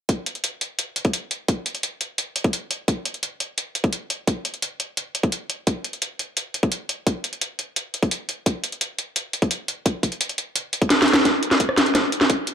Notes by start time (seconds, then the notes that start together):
0.09 kick, closed hi-hat
0.26 closed hi-hat
0.35 closed hi-hat
0.44 closed hi-hat
0.61 closed hi-hat
0.79 closed hi-hat
0.96 closed hi-hat
1.05 kick, closed hi-hat
1.13 closed hi-hat
1.31 closed hi-hat
1.48 kick, closed hi-hat
1.66 closed hi-hat
1.75 closed hi-hat
1.83 closed hi-hat
2.01 closed hi-hat
2.18 closed hi-hat
2.36 closed hi-hat
2.44 kick, closed hi-hat
2.53 closed hi-hat
2.71 closed hi-hat
2.88 kick, closed hi-hat
3.05 closed hi-hat
3.14 closed hi-hat
3.23 closed hi-hat
3.40 closed hi-hat
3.58 closed hi-hat
3.75 closed hi-hat
3.84 kick, closed hi-hat
3.93 closed hi-hat
4.10 closed hi-hat
4.28 kick, closed hi-hat
4.45 closed hi-hat
4.54 closed hi-hat
4.62 closed hi-hat
4.80 closed hi-hat
4.97 closed hi-hat
5.15 closed hi-hat
5.23 kick, closed hi-hat
5.32 closed hi-hat
5.50 closed hi-hat
5.67 kick, closed hi-hat
5.84 closed hi-hat
5.93 closed hi-hat
6.02 closed hi-hat
6.19 closed hi-hat
6.37 closed hi-hat
6.54 closed hi-hat
6.63 kick, closed hi-hat
6.72 closed hi-hat
6.89 closed hi-hat
7.07 kick, closed hi-hat
7.24 closed hi-hat
7.33 closed hi-hat
7.41 closed hi-hat
7.59 closed hi-hat
7.76 closed hi-hat
7.94 closed hi-hat
8.03 kick, closed hi-hat
8.11 closed hi-hat
8.29 closed hi-hat
8.46 kick, closed hi-hat
8.64 closed hi-hat
8.72 closed hi-hat
8.81 closed hi-hat
8.99 closed hi-hat
9.16 closed hi-hat
9.33 closed hi-hat
9.42 kick, closed hi-hat
9.51 closed hi-hat
9.68 closed hi-hat
9.86 kick, closed hi-hat
10.03 kick, closed hi-hat
10.12 closed hi-hat
10.21 closed hi-hat
10.29 closed hi-hat
10.38 closed hi-hat
10.56 closed hi-hat
10.73 closed hi-hat
10.82 kick, closed hi-hat
10.90 snare, closed hi-hat
11.02 snare
11.08 closed hi-hat
11.14 snare
11.25 kick, snare, closed hi-hat
11.43 closed hi-hat
11.51 snare, closed hi-hat
11.60 kick, closed hi-hat
11.69 cross-stick
11.78 snare, closed hi-hat
11.86 closed hi-hat
11.95 kick, cross-stick, snare, closed hi-hat
12.12 closed hi-hat
12.21 snare
12.30 kick, closed hi-hat
12.47 closed hi-hat